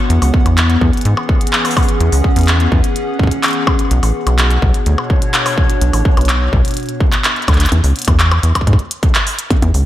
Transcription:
Already playing: B3 C#5 F#5
0.10 E2 E3, closed hi-hat
0.22 C#2, open hi-hat, percussion blips
0.30 C#4 G#4, kick
0.46 E2, closed hi-hat, percussion blips
0.58 clap, closed hi-hat
0.70 closed hi-hat
0.81 E2, kick
0.93 closed hi-hat
0.97 closed hi-hat
1.01 G#2, closed hi-hat
1.05 closed hi-hat
1.17 percussion blips
1.29 kick
1.41 closed hi-hat
1.47 closed hi-hat
1.53 clap
1.65 open hi-hat, percussion blips
1.71 open hi-hat
1.77 kick, open hi-hat, percussion blips
1.83 open hi-hat
1.89 closed hi-hat
2.00 E2, closed hi-hat
2.12 C#2, open hi-hat
2.24 kick
2.36 E2, closed hi-hat
2.39 closed hi-hat
2.41 closed hi-hat
2.43 closed hi-hat
2.46 clap, closed hi-hat
2.48 closed hi-hat
2.60 closed hi-hat
2.72 E2, kick
2.84 closed hi-hat
2.96 closed hi-hat
3.19 kick
3.23 kick
3.27 kick
3.31 closed hi-hat
3.43 clap, closed hi-hat
3.46 closed hi-hat
3.51 closed hi-hat
3.53 closed hi-hat
3.67 kick, percussion blips
3.79 closed hi-hat
3.91 B1 B2, closed hi-hat
3.99 A1 D4
4.03 open hi-hat, percussion blips
4.15 C#5
4.27 B1, closed hi-hat, percussion blips
4.39 clap, closed hi-hat
4.51 closed hi-hat
4.62 B1, kick
4.74 closed hi-hat
4.86 D2, closed hi-hat
4.98 percussion blips
5.10 kick
5.22 closed hi-hat
5.34 clap, closed hi-hat
5.46 open hi-hat, percussion blips
5.58 kick
5.70 closed hi-hat
5.81 B1, closed hi-hat
5.93 A1, open hi-hat, percussion blips
6.05 kick
6.17 B1, closed hi-hat, percussion blips
6.21 closed hi-hat
6.25 clap, closed hi-hat
6.29 closed hi-hat
6.53 B1, kick
6.65 closed hi-hat
6.68 closed hi-hat
6.71 closed hi-hat
6.74 closed hi-hat
6.77 closed hi-hat
6.80 closed hi-hat
6.83 closed hi-hat
6.86 closed hi-hat
6.89 closed hi-hat
7.00 kick
7.12 clap, closed hi-hat
7.24 clap, closed hi-hat
7.36 closed hi-hat
7.42 closed hi-hat
7.48 D2, kick, clap, closed hi-hat, percussion blips
7.52 clap, closed hi-hat
7.56 clap
7.60 clap, closed hi-hat
7.64 clap, closed hi-hat
7.68 clap, closed hi-hat, percussion blips
7.72 E2
7.84 C#2, open hi-hat
7.96 closed hi-hat
7.99 closed hi-hat
8.02 closed hi-hat
8.05 E2, kick, closed hi-hat, percussion blips
8.20 clap, closed hi-hat
8.32 closed hi-hat, percussion blips
8.43 E2, closed hi-hat
8.55 kick, closed hi-hat, percussion blips
8.61 kick
8.67 G#2, kick, closed hi-hat
8.73 kick
8.79 closed hi-hat
8.91 closed hi-hat
9.03 kick, closed hi-hat
9.15 clap, closed hi-hat
9.27 open hi-hat
9.39 closed hi-hat
9.50 kick, closed hi-hat, percussion blips
9.62 E2, closed hi-hat, percussion blips
9.74 C#2, open hi-hat

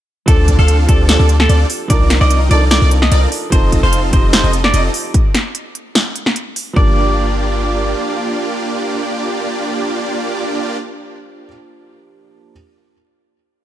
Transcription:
0.26 D2 F3 C4 D4 F4 A4 D5, kick, closed hi-hat
0.30 A4
0.48 kick, closed hi-hat
0.59 D2 C4 D4 F4 A4 F5
0.68 closed hi-hat
0.87 D2 F3 C4 D4 F4 G4 A4 D5, kick, closed hi-hat
1.09 A4, snare, closed hi-hat
1.19 D2 C4 D4 F4 A4 D5
1.29 closed hi-hat
1.40 A4, snare
1.49 D2 C4 D4 F4 A4 D5, closed hi-hat
1.70 open hi-hat
1.88 C2 F3 C4 D4 D#4 F4 A#4 D5, kick, closed hi-hat
2.10 snare, closed hi-hat
2.21 C2 C4 D#4 F4 A#4 D5 D#5
2.30 closed hi-hat
2.49 C2 F3 C4 D4 D#4 F4 A4 A#4 D5, closed hi-hat
2.71 D5, snare, closed hi-hat
2.82 C2 C4 D#4 F4 A#4 D5
2.91 closed hi-hat
3.02 D#5, snare
3.12 C2 C4 D#4 F4 A#4 D5, closed hi-hat
3.32 open hi-hat
3.50 F1 F3 C4 D#4 F4 A4 C5 D#5, kick, closed hi-hat
3.54 A4
3.72 kick, closed hi-hat
3.83 F1 C4 D#4 F4 A4 C5 F5
3.93 closed hi-hat
4.11 F1 F3 C4 D#4 G4 C5 D#5, kick, closed hi-hat
4.33 C5, snare, closed hi-hat
4.44 F1 C4 D#4 F4 A4 D#5
4.53 closed hi-hat
4.64 D5, snare
4.74 F1 C4 D#4 F4 A4 D#5, closed hi-hat
4.94 open hi-hat
5.14 kick, closed hi-hat
5.35 snare, closed hi-hat
5.55 closed hi-hat
5.75 closed hi-hat
5.95 snare, closed hi-hat
6.16 closed hi-hat
6.26 snare
6.36 closed hi-hat
6.56 open hi-hat
6.73 G1 F3 A#3 D4 F4 G4 D5, kick
6.79 G4

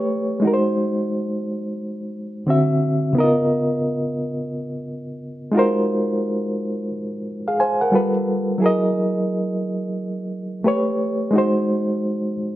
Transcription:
Already playing: A3 G4 B4 C#5
0.40 G#3 D#4
0.45 F#4 A#4
0.54 C5
2.47 D3 C4 F#4 E5
3.13 C#3 B3 D#4
3.19 A#4 D#5
3.23 F4
5.52 G#3 D#4 F4
5.56 F#4 A#4 C5
7.48 G#4 F5
7.60 C5 G#5
7.81 A#4 F#5
7.92 G3 F4 A4 B4
8.58 F#3 E4 G#4
8.64 A#4 D#5
10.64 A3 G4 B4 C#5
11.31 G#3 D#4
11.36 F#4 C5

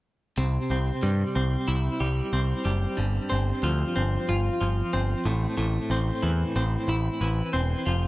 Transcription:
0.38 C2 C3
0.70 C2 C4
1.03 G2 G3
1.35 C2 C4
1.68 C2 E4
2.00 C2 G3
2.33 C2 C4
2.65 F#1 G3
2.97 G1 G2
3.30 G1 C4
3.63 D2 F3
3.96 G1 C4
4.29 G1 F4
4.61 G1 F3
4.93 G1 C4
5.26 A1 A2
5.57 A1 A2
5.90 A1 C4
6.23 E2 E3
6.56 A1 C4
6.88 A1 E4
7.21 A1 E3
7.53 E1 C4
7.86 F1 F3

